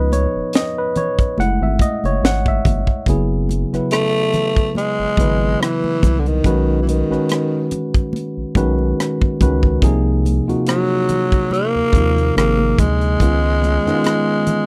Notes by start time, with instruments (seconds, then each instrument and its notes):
Already playing: analog synth bass C#2, tine electric piano F3 B3 D#4 B4 D#5
0.12 tine electric piano C#5, closed hi-hat, muted conga, high conga
0.35 analog synth bass F#1
0.53 tine electric piano D#5, snare, closed hi-hat
0.78 tine electric piano B4
0.95 tine electric piano C#5, closed hi-hat, muted conga, low conga
1.19 kick, closed hi-hat
1.38 analog synth bass F#1, tine electric piano G#3 A3 E4 F#5, closed hi-hat, high conga
1.61 analog synth bass G#1, tine electric piano E5
1.79 tine electric piano D#5, kick, closed hi-hat, muted conga, high conga
2.04 analog synth bass F#1, tine electric piano C#5, closed hi-hat, high conga
2.23 analog synth bass G#1, tine electric piano F#5, snare, closed hi-hat
2.46 tine electric piano E5, kick, high conga
2.65 analog synth bass G1, kick, closed hi-hat, muted conga, high conga, low conga
2.87 kick
3.06 analog synth bass F#1, tine electric piano C#3 F#3 B3 E4 G#4, kick, closed hi-hat
3.49 closed hi-hat, high conga
3.73 analog synth bass G#1, tine electric piano C#3 F#3 B3 E4 B4, cross-stick, closed hi-hat
3.91 tenor saxophone A3, cross-stick, closed hi-hat
4.33 closed hi-hat, low conga
4.56 kick, closed hi-hat
4.75 tenor saxophone G#3, closed hi-hat, high conga
4.99 analog synth bass G#1
5.17 analog synth bass G#1, tine electric piano C#3 F#3 B3 E4 B4, kick, closed hi-hat, muted conga, high conga
5.41 high conga
5.61 tenor saxophone E3, cross-stick, closed hi-hat
5.84 high conga
6.03 analog synth bass C2, kick, cross-stick, closed hi-hat, muted conga, high conga, low conga
6.19 tenor saxophone D3
6.26 tenor saxophone D#3, closed hi-hat
6.44 analog synth bass B1, tine electric piano D#3 G#3 C#4 F#4 B4, kick, closed hi-hat
6.82 tenor saxophone E3
6.87 tenor saxophone D#3, closed hi-hat, high conga
7.10 analog synth bass B1, tine electric piano D#3 G#3 C#4 F#4 B4, cross-stick
7.29 cross-stick, closed hi-hat
7.71 closed hi-hat, muted conga, low conga
7.94 kick, closed hi-hat
8.13 closed hi-hat, muted conga, high conga
8.37 analog synth bass B1
8.55 analog synth bass B1, tine electric piano D#3 G#3 C#4 F#4 B4, kick, closed hi-hat, muted conga, high conga
8.79 high conga
9.00 cross-stick, closed hi-hat
9.21 kick, high conga
9.41 analog synth bass C#2, tine electric piano D#3 G#3 C#4 F#4 B4, kick, closed hi-hat, muted conga, high conga, low conga
9.63 kick
9.82 analog synth bass C2, tine electric piano C3 F3 A#3 D#4 G#4, kick, closed hi-hat, muted conga
10.25 closed hi-hat, high conga
10.47 analog synth bass D#2, tine electric piano C3 A#3 D#4 F4 F#4, closed hi-hat
10.66 tenor saxophone F#3, cross-stick, closed hi-hat, muted conga
11.09 closed hi-hat, low conga
11.32 kick, closed hi-hat
11.51 tenor saxophone A#3, closed hi-hat, high conga
11.75 analog synth bass D#2
11.93 analog synth bass D#2, tine electric piano C3 F3 A#3 D#4 F4, kick, closed hi-hat, high conga
12.17 closed hi-hat, high conga
12.36 analog synth bass G#1, tine electric piano C3 F3 A#3 D#4 G#4, tenor saxophone A#3, cross-stick, closed hi-hat, muted conga
12.59 high conga
12.79 analog synth bass D2, tenor saxophone G#3, kick, cross-stick, closed hi-hat, muted conga, high conga, low conga
13.01 closed hi-hat
13.20 analog synth bass C#2, tine electric piano D#3 G#3 B3 C#4 F4, kick, closed hi-hat, muted conga
13.63 closed hi-hat, muted conga, high conga
13.86 analog synth bass F#2, tine electric piano D#3 G#3 B3 C#4 D#4, cross-stick, closed hi-hat
13.95 tine electric piano F4
14.04 cross-stick, closed hi-hat
14.46 closed hi-hat, muted conga, low conga